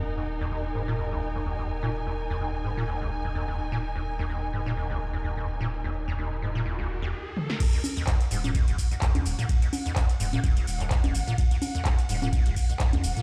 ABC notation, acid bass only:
X:1
M:4/4
L:1/16
Q:"Swing 16ths" 1/4=127
K:Ebm
V:1 name="Acid bass" clef=bass
z E,, z E,, E,, z A,, B,, E,, D,, z E,, E,, E,, z B,, | z E,, z E,, E,, z A,, B,, E,, D,, z E,, E,, E,, z B,, | z E,, z E,, E,, z A,, B,, E,, D,, z E,, E,, E,, z B,, | z E,, z E,, E,, z A,, B,, E,, D,, z E,, z4 |
z E,, z E,, E,, z A,, B,, E,, D,, z E,, E,, E,, z B,, | z E,, z E,, E,, z A,, B,, E,, D,, z E,, E,, E,, z B,, | z E,, z E,, E,, z A,, B,, E,, D,, z E,, E,, E,, z B,, |]